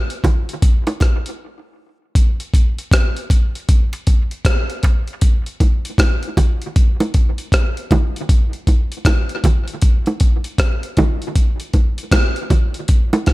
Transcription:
0.10 closed hi-hat medium
0.24 kick medium
0.24 closed hi-hat medium
0.24 low bongo medium
0.49 closed hi-hat medium
0.62 kick loud
0.62 closed hi-hat loud
0.87 closed hi-hat soft
0.87 high bongo medium
1.00 kick medium
1.00 cross-stick medium
1.00 closed hi-hat medium
1.00 high bongo soft
1.26 closed hi-hat soft
2.15 kick loud
2.15 closed hi-hat medium
2.40 closed hi-hat soft
2.54 kick medium
2.54 closed hi-hat medium
2.54 high bongo soft
2.79 closed hi-hat soft
2.91 kick loud
2.91 cross-stick loud
2.91 closed hi-hat loud
2.91 high bongo medium
3.17 closed hi-hat soft
3.30 kick medium
3.30 closed hi-hat medium
3.30 low bongo medium
3.55 closed hi-hat soft
3.69 kick loud
3.69 closed hi-hat medium
3.93 closed hi-hat soft
3.93 high bongo medium
4.07 kick medium
4.07 closed hi-hat medium
4.31 closed hi-hat soft
4.45 kick loud
4.45 cross-stick loud
4.45 closed hi-hat medium
4.70 closed hi-hat medium
4.83 kick medium
4.83 closed hi-hat medium
4.83 high bongo medium
4.83 low bongo medium
5.08 closed hi-hat soft
5.21 kick medium
5.21 closed hi-hat medium
5.46 closed hi-hat soft
5.60 kick medium
5.60 closed hi-hat medium
5.60 high bongo soft
5.85 closed hi-hat medium
5.98 kick loud
5.98 cross-stick loud
5.98 closed hi-hat medium
5.98 high bongo medium
6.23 closed hi-hat medium
6.37 kick loud
6.37 closed hi-hat medium
6.37 low bongo medium
6.62 closed hi-hat medium
6.76 kick loud
6.76 closed hi-hat medium
7.00 closed hi-hat soft
7.00 high bongo medium
7.14 kick medium
7.14 closed hi-hat medium
7.38 closed hi-hat soft
7.52 kick medium
7.52 cross-stick loud
7.52 closed hi-hat medium
7.77 closed hi-hat medium
7.91 kick medium
7.91 closed hi-hat medium
7.91 high bongo medium
7.91 low bongo medium
8.16 closed hi-hat soft
8.29 kick loud
8.29 closed hi-hat medium
8.53 closed hi-hat soft
8.67 kick medium
8.67 closed hi-hat medium
8.67 high bongo soft
8.92 closed hi-hat soft
9.05 kick loud
9.05 cross-stick loud
9.05 closed hi-hat medium
9.05 high bongo medium
9.29 closed hi-hat soft
9.44 kick medium
9.44 closed hi-hat medium
9.44 low bongo medium
9.68 closed hi-hat medium
9.82 kick loud
9.82 closed hi-hat loud
10.06 closed hi-hat soft
10.06 high bongo medium
10.20 kick medium
10.20 closed hi-hat medium
10.44 closed hi-hat soft
10.58 kick loud
10.58 cross-stick loud
10.58 closed hi-hat medium
10.83 closed hi-hat medium
10.97 kick loud
10.97 closed hi-hat medium
10.97 high bongo medium
10.97 low bongo medium
11.22 closed hi-hat soft
11.36 kick loud
11.36 closed hi-hat medium
11.60 closed hi-hat soft
11.73 kick medium
11.73 closed hi-hat medium
11.73 high bongo soft
11.98 closed hi-hat medium
12.12 kick loud
12.12 cross-stick loud
12.12 closed hi-hat loud
12.12 high bongo medium
12.36 closed hi-hat soft
12.50 kick loud
12.50 closed hi-hat medium
12.50 low bongo medium
12.74 closed hi-hat soft
12.88 kick loud
12.88 closed hi-hat medium
13.13 closed hi-hat soft
13.13 high bongo medium
13.26 kick medium
13.26 cross-stick medium
13.26 closed hi-hat medium
13.26 high bongo medium

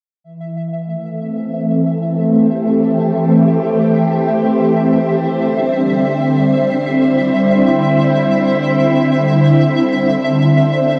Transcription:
0.24 5.40 E3 medium
0.24 10.99 E5 medium
0.84 5.40 A3 medium
1.18 10.99 C4 medium
2.09 7.47 G4 medium
2.32 10.99 C5 medium
5.40 10.99 D3 medium
5.49 10.56 G3 medium
6.85 10.99 E4 medium

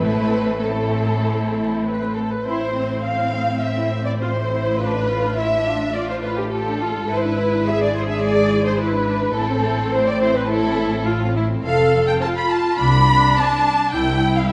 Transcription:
0.00 2.25 A1 soft
0.00 2.25 A2 medium
0.00 0.63 A3 medium
0.00 0.63 C4 soft
0.00 0.61 E4 soft
0.00 0.61 A4 soft
0.00 0.62 B4 medium
0.62 2.22 A3 soft
0.62 2.22 C4 soft
0.62 1.83 E4 soft
0.62 1.82 A4 medium
0.62 1.85 A4 medium
1.85 2.14 B4 medium
2.15 2.31 A4 medium
2.31 2.46 B4 medium
2.45 7.05 A1 soft
2.45 7.05 A2 soft
2.45 2.59 C4 soft
2.45 2.74 E4 soft
2.45 3.03 C5 medium
2.61 2.75 E4 soft
2.76 4.17 C4 medium
2.76 2.90 C4 soft
2.91 3.05 E4 soft
3.04 3.18 C4 soft
3.04 3.61 F5 medium
3.18 3.33 E4 soft
3.34 3.48 C4 soft
3.48 3.62 E4 soft
3.61 3.76 C4 soft
3.61 4.05 E5 medium
3.77 3.92 E4 soft
3.92 4.06 C4 soft
4.05 4.20 E4 soft
4.05 4.11 D5 medium
4.19 4.34 C4 soft
4.19 4.29 F4 soft
4.19 4.76 C5 medium
4.35 4.49 E4 soft
4.49 4.63 C4 soft
4.49 4.78 E4 soft
4.65 4.79 E4 soft
4.77 5.08 D4 soft
4.77 4.92 F4 soft
4.77 5.36 B4 medium
4.94 5.08 D4 soft
5.07 5.22 F4 soft
5.07 5.36 F4 medium
5.22 5.37 D4 soft
5.35 5.66 E4 soft
5.35 5.50 F4 soft
5.35 5.92 E5 medium
5.52 5.66 D4 soft
5.66 5.95 D4 soft
5.66 5.80 F4 soft
5.82 5.96 D4 soft
5.93 6.51 F4 soft
5.93 6.08 F4 soft
5.93 6.08 D5 medium
6.09 6.24 D4 soft
6.09 6.15 C5 medium
6.22 6.38 F4 soft
6.22 6.37 B4 medium
6.37 6.52 D4 soft
6.37 6.52 G4 medium
6.52 6.65 F4 soft
6.52 6.80 G4 medium
6.52 7.08 A4 medium
6.68 6.82 D4 soft
6.81 7.10 F4 soft
6.81 6.96 F4 soft
6.94 7.09 D4 soft
7.09 9.33 G#1 medium
7.09 9.32 G#2 soft
7.09 7.23 E4 soft
7.09 7.66 E4 medium
7.09 7.16 B4 medium
7.16 7.23 C5 medium
7.23 7.38 D4 soft
7.23 7.67 B4 medium
7.37 7.52 E4 soft
7.53 7.67 D4 soft
7.66 7.80 E4 soft
7.66 8.81 G#4 medium
7.66 7.81 E5 medium
7.80 7.95 D4 soft
7.80 7.96 D5 medium
7.92 8.08 E4 soft
7.92 8.01 C5 medium
8.07 8.23 D4 soft
8.07 8.23 E5 medium
8.21 8.36 E4 soft
8.21 8.65 D5 medium
8.36 8.51 D4 soft
8.50 8.65 E4 soft
8.64 8.79 D4 soft
8.64 8.80 C5 medium
8.79 8.93 E4 soft
8.79 9.09 E4 medium
8.79 9.35 B4 medium
8.93 9.08 D4 soft
9.07 9.16 D4 medium
9.07 9.22 E4 soft
9.22 9.36 D4 medium
9.36 11.61 A1 medium
9.36 11.61 A2 medium
9.36 10.48 C4 medium
9.36 9.50 E4 medium
9.36 9.93 A4 medium
9.51 9.65 C4 soft
9.64 9.79 E4 soft
9.78 9.93 C4 medium
9.93 10.06 E4 soft
9.93 10.07 C5 medium
10.07 10.22 C4 soft
10.07 10.22 D5 medium
10.21 10.36 E4 medium
10.21 10.35 C5 medium
10.35 10.50 C4 soft
10.35 10.50 B4 medium
10.49 10.63 E4 medium
10.49 11.06 E4 medium
10.49 11.06 A4 medium
10.65 10.79 C4 medium
10.79 10.93 E4 soft
10.92 11.07 C4 medium
11.07 11.21 E4 medium
11.07 11.36 F4 medium
11.21 11.36 C4 soft
11.36 11.50 E4 medium
11.36 11.44 E4 medium
11.50 11.64 C4 medium
11.65 12.12 F1 medium
11.65 12.12 F2 medium
11.65 12.21 A4 medium
11.65 12.05 F5 medium
12.08 12.14 G5 medium
12.20 12.28 C4 medium
12.20 12.79 F4 medium
12.20 12.28 A5 medium
12.37 12.50 B5 medium
12.51 12.79 A5 medium
12.78 13.27 C2 medium
12.78 13.94 D4 medium
12.78 13.35 B5 loud
13.36 13.44 C4 medium
13.36 13.94 A5 loud
13.93 14.41 C2 medium
13.93 14.42 C2 medium
13.93 14.52 E4 medium
13.93 14.35 G5 medium
14.36 14.51 F5 medium

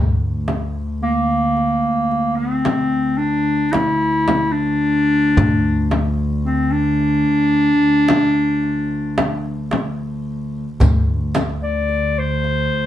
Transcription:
0.00 1.80 D2 medium
0.00 10.80 D2 medium
0.48 darbuka tek medium
0.48 frame drum medium
1.02 2.38 A#3 medium
1.02 darbuka ka soft
1.57 darbuka ka soft
2.11 darbuka ka soft
2.37 3.19 C4 medium
2.65 darbuka tek medium
2.65 frame drum medium
3.17 3.74 D4 medium
3.17 darbuka ka soft
3.72 4.54 E4 medium
3.72 darbuka tek medium
3.72 frame drum medium
4.28 darbuka tek medium
4.28 frame drum medium
4.52 6.17 D4 loud
5.37 7.24 D2 loud
5.37 frame drum medium
5.37 darbuka dum medium
5.91 darbuka tek medium
5.91 frame drum medium
6.45 6.73 C4 medium
6.45 darbuka ka soft
6.72 9.79 D4 loud
7.00 darbuka ka soft
7.55 darbuka ka soft
8.09 darbuka tek medium
8.09 frame drum medium
8.63 darbuka ka soft
9.18 darbuka tek medium
9.18 frame drum medium
9.71 darbuka tek medium
9.71 frame drum medium
10.80 12.86 D2 medium
10.80 12.68 D2 loud
10.80 riq medium
10.80 darbuka dum medium
10.80 frame drum medium
11.34 riq soft
11.34 darbuka tek medium
11.34 frame drum medium
11.63 12.20 D5 medium
11.89 darbuka ka soft
12.19 12.86 C5 medium
12.44 darbuka ka soft

